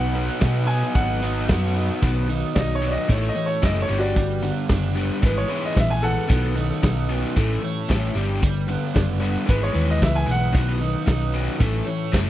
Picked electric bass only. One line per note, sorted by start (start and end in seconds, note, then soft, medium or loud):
0.00 0.28 B1 medium
0.42 0.82 B2 loud
0.95 1.50 G#1 loud
1.49 1.89 F#2 loud
2.02 2.42 B1 medium
2.56 2.96 B1 medium
3.09 3.29 A1 loud
3.63 3.83 F#1 medium
3.90 4.50 G1 medium
4.69 5.10 F#1 medium
5.23 5.43 G#1 loud
5.77 6.17 A#1 medium
6.30 6.70 B1 medium
6.83 7.23 B1 medium
7.36 7.56 A1 loud
7.90 8.09 A1 medium
8.15 8.75 G1 medium
8.96 9.35 F#1 medium
9.49 9.69 G#1 medium
9.75 9.98 D#2 medium
10.02 10.25 C#2 medium
10.28 10.51 B1 medium
10.55 10.94 B1 medium
11.08 11.47 B1 loud
11.60 11.80 A1 loud
12.13 12.30 F#1 medium